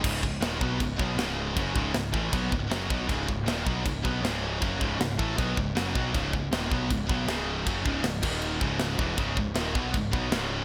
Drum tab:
CC |x-x-x-x-|x-x-x-x-|x-x-x-x-|x-x-x-x-|
SD |--o---o-|--o---o-|--o---o-|--o---o-|
BD |oo-ooo--|oo-ooo-o|oo-ooo--|oo-ooo-o|

CC |x-x-x-x-|x-xxx-x-|x-x-x-x-|
SD |--o---o-|--o---o-|--o---o-|
BD |oo-ooo--|oo-o-o-o|oo-ooo--|